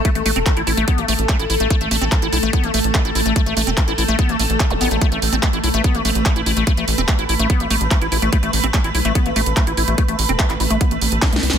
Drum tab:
HH |x--x--o--x--x--x--o--x--x--x--o--x--x--x--o--x--|x--x--o--x--x--x--o--x--x--x--o--x--x--x--o--x--|x--x--o--x--x--x--o--x--x--x--o--x--x--x--o--x--|x--x--o--x--x--x--o--x--x--x--o--x--x--x--o--x--|
CP |------------x-----------------------x-----------|------------x-----------------------x-----------|------------x-----------------------x-----------|------------x-----------------------x-----------|
SD |------------------------------------------------|------------------------------------------------|------------------------------------------------|------------------------------------------------|
BD |o-----------o-----------o-----------o-----------|o-----------o-----------o-----------o-----------|o-----------o-----------o-----------o-----------|o-----------o-----------o-----------o-----------|

HH |x--x--o--x--x--x--o--x--x--x--o--x--x--x--o--x--|x--x--o--x--x--x--o--x--x--x--o--x--x--x--o--x--|x--x--o--x--x--x--o--x--x--x--o--x--x--x--o--x--|
CP |------------x-----------------------x-----------|------------x-----------------------x-----------|------------x--x--------------------x-----------|
SD |------------------------------------------------|------------------------------------------------|------------------------------------o---o---o---|
BD |o-----------o-----------o-----------o-----------|o-----------o-----------o-----------o-----------|o-----------o-----------o-----------o-----------|